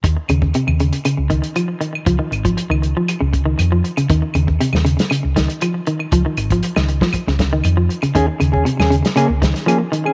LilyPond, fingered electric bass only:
\new Staff \with { instrumentName = "Fingered electric bass" } { \clef bass \time 4/4 \key des \lydian \tempo 4 = 118 ees,16 r16 ees,8 r16 ees,8 r8 des,8 r4 r16 | des,16 r16 aes,,8 r16 des,8 r8 des,8. f,8 r8 | ees,16 r16 ees,8 r16 ees,8 r8 des,8 r4 r16 | des,16 r16 aes,,8 r16 des,8 r8 des,8. f,8 r8 |
ees,16 r16 ees,8 r16 ees,8 r8 des,8 r4 r16 | }